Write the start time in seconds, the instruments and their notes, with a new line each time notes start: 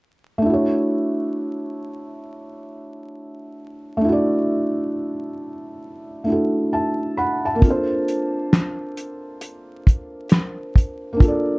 0.38 felt piano A3 D4
0.46 felt piano E4 F#4
0.53 felt piano C#5
3.97 felt piano A3
4.01 felt piano D4 E4
4.08 felt piano F#4 D5
6.24 felt piano A3 D4
6.28 felt piano E4 F#4 A4
6.73 felt piano E5 A5
7.17 felt piano F#5 B5
7.45 felt piano E5 A5
7.55 felt piano A#3 C4
7.62 felt piano D4 F4, kick, closed hi-hat
7.67 felt piano A4 C5
8.08 closed hi-hat
8.53 snare, clap, closed hi-hat
8.97 closed hi-hat
9.41 closed hi-hat
9.87 kick, closed hi-hat
10.30 snare, clap, closed hi-hat
10.76 kick, closed hi-hat
11.13 felt piano A#3 D4
11.20 felt piano F4 A4, kick, closed hi-hat
11.28 felt piano D5